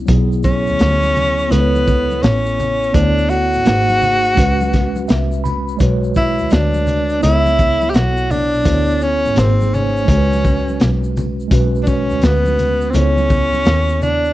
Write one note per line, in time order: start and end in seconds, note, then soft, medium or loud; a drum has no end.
0.06 0.64 B1 medium
0.06 1.47 F#3 medium
0.06 1.47 B3 medium
0.06 1.49 E4 medium
0.06 kick loud
0.06 closed hi-hat medium
0.06 shaker medium
0.11 1.50 G#4 medium
0.32 shaker soft
0.43 1.53 C#4 loud
0.43 kick medium
0.43 shaker soft
0.43 shaker medium
0.67 0.77 D2 soft
0.67 shaker soft
0.79 1.48 D2 medium
0.79 snare medium
0.79 closed hi-hat medium
0.79 shaker medium
1.03 high conga medium
1.03 shaker soft
1.16 low conga medium
1.16 shaker soft
1.16 shaker medium
1.39 shaker medium
1.48 2.19 C#2 loud
1.48 2.90 B3 medium
1.48 2.24 B3 loud
1.48 2.91 E4 medium
1.48 2.92 A4 medium
1.48 closed hi-hat medium
1.48 high conga soft
1.48 shaker medium
1.54 1.61 B4 medium
1.60 2.96 C#5 medium
1.75 high conga medium
1.75 shaker soft
1.87 kick medium
1.87 low conga medium
1.87 shaker soft
2.11 high conga medium
2.11 shaker soft
2.22 2.91 A1 medium
2.22 2.96 C#4 medium
2.22 snare loud
2.22 closed hi-hat medium
2.22 shaker medium
2.46 shaker soft
2.60 low conga medium
2.60 shaker medium
2.83 shaker soft
2.93 3.50 D2 loud
2.93 3.65 B3 medium
2.93 3.31 D4 loud
2.93 3.65 E4 medium
2.93 3.66 A4 medium
2.93 3.03 C5 medium
2.93 kick medium
2.93 closed hi-hat medium
2.93 shaker medium
3.02 3.70 C#5 medium
3.18 shaker soft
3.29 5.44 F#4 loud
3.29 shaker soft
3.53 3.63 G#1 soft
3.53 shaker soft
3.64 4.34 G#1 medium
3.64 4.36 A#3 medium
3.64 4.37 D#4 medium
3.64 4.37 G#4 medium
3.64 3.75 B4 medium
3.64 snare medium
3.64 closed hi-hat medium
3.64 shaker medium
3.73 4.41 C5 medium
3.89 high conga medium
3.89 shaker soft
4.02 low conga medium
4.02 shaker soft
4.02 shaker medium
4.25 shaker soft
4.34 5.05 C#2 medium
4.34 5.76 G#3 medium
4.34 5.77 C#4 medium
4.34 5.77 F#4 medium
4.34 kick loud
4.34 closed hi-hat medium
4.34 high conga soft
4.34 shaker medium
4.40 5.78 B4 medium
4.61 high conga medium
4.61 shaker soft
4.73 kick medium
4.73 snare soft
4.73 closed hi-hat soft
4.73 low conga medium
4.73 shaker soft
4.96 high conga medium
4.96 shaker soft
5.08 5.77 C2 medium
5.08 5.42 E5 medium
5.08 snare loud
5.08 closed hi-hat medium
5.08 shaker medium
5.32 shaker soft
5.44 5.77 B5 medium
5.44 low conga medium
5.44 shaker soft
5.68 shaker soft
5.77 6.36 B1 medium
5.77 7.18 G#3 medium
5.77 7.20 F#4 medium
5.77 7.19 C#5 medium
5.77 kick loud
5.77 closed hi-hat medium
5.77 shaker medium
5.82 7.21 B4 medium
6.04 shaker soft
6.15 6.53 E4 loud
6.15 kick medium
6.15 shaker soft
6.39 6.48 D2 soft
6.39 shaker soft
6.50 7.19 D2 medium
6.50 7.22 D4 medium
6.50 snare loud
6.50 closed hi-hat medium
6.50 shaker medium
6.74 high conga medium
6.74 shaker soft
6.87 closed hi-hat medium
6.87 low conga medium
6.87 shaker soft
6.87 shaker medium
7.09 shaker soft
7.20 7.91 C#2 loud
7.20 8.61 B3 medium
7.20 8.62 E4 medium
7.20 7.92 E4 loud
7.20 8.63 A4 medium
7.20 closed hi-hat medium
7.20 high conga soft
7.20 shaker medium
7.25 8.64 C#5 medium
7.46 high conga medium
7.46 shaker soft
7.59 kick medium
7.59 closed hi-hat soft
7.59 low conga medium
7.59 shaker soft
7.81 high conga medium
7.81 shaker soft
7.90 7.97 G4 medium
7.90 shaker medium
7.94 8.50 B1 medium
7.94 8.33 F#4 loud
7.94 snare loud
7.94 closed hi-hat medium
8.17 shaker medium
8.31 9.04 D4 loud
8.31 low conga medium
8.31 shaker medium
8.54 8.63 B1 soft
8.54 shaker soft
8.64 9.22 D2 medium
8.64 9.36 B3 medium
8.64 9.37 E4 medium
8.64 9.37 A4 medium
8.64 8.75 C5 medium
8.64 kick medium
8.64 closed hi-hat loud
8.64 shaker medium
8.73 9.41 C#5 medium
8.90 shaker soft
9.01 9.40 C#4 loud
9.01 shaker soft
9.25 9.34 G#1 soft
9.25 shaker soft
9.35 10.05 G#1 loud
9.35 10.07 A#3 medium
9.35 9.76 C4 medium
9.35 10.08 D#4 medium
9.35 10.08 G#4 medium
9.35 9.46 A#4 medium
9.35 snare loud
9.35 closed hi-hat medium
9.35 shaker medium
9.44 10.12 C5 medium
9.61 high conga medium
9.61 shaker soft
9.73 11.16 C#4 loud
9.73 low conga medium
9.73 shaker medium
9.73 shaker soft
9.97 shaker soft
10.05 10.80 C#2 loud
10.05 11.47 G#3 medium
10.05 11.48 C#4 medium
10.05 11.49 F#4 medium
10.05 kick medium
10.05 closed hi-hat medium
10.10 10.18 A4 medium
10.10 high conga soft
10.10 shaker medium
10.17 11.52 B4 medium
10.33 high conga medium
10.33 shaker soft
10.44 kick medium
10.44 low conga medium
10.44 shaker soft
10.46 shaker soft
10.68 high conga medium
10.68 shaker soft
10.80 11.48 B1 loud
10.80 snare loud
10.80 closed hi-hat medium
10.80 shaker medium
11.04 shaker soft
11.17 low conga medium
11.17 shaker soft
11.17 shaker medium
11.40 shaker soft
11.48 12.07 B1 loud
11.48 12.90 G#3 medium
11.48 12.91 C#4 medium
11.48 12.92 F#4 medium
11.48 kick loud
11.48 closed hi-hat medium
11.48 shaker medium
11.54 12.92 B4 medium
11.76 shaker soft
11.83 11.89 D4 medium
11.83 shaker medium
11.87 12.26 C#4 medium
11.87 kick medium
12.10 12.20 D2 medium
12.10 shaker medium
12.22 12.91 D2 loud
12.22 12.92 B3 medium
12.22 snare loud
12.22 closed hi-hat medium
12.22 shaker medium
12.46 high conga medium
12.46 shaker soft
12.59 closed hi-hat medium
12.59 low conga medium
12.59 shaker medium
12.59 shaker soft
12.81 shaker soft
12.90 14.33 B3 medium
12.90 12.96 C4 medium
12.90 14.33 E4 medium
12.90 high conga soft
12.90 shaker medium
12.94 13.65 C#2 loud
12.94 14.02 C#4 loud
12.94 14.33 A4 medium
12.94 13.04 C5 medium
12.94 closed hi-hat medium
13.03 14.33 C#5 medium
13.17 high conga medium
13.17 shaker soft
13.29 kick medium
13.29 low conga medium
13.29 shaker soft
13.53 high conga medium
13.53 shaker soft
13.65 14.33 D#2 medium
13.65 snare loud
13.65 closed hi-hat medium
13.65 shaker medium
13.89 shaker medium
14.02 14.33 D4 medium
14.02 low conga medium
14.02 shaker soft
14.25 shaker soft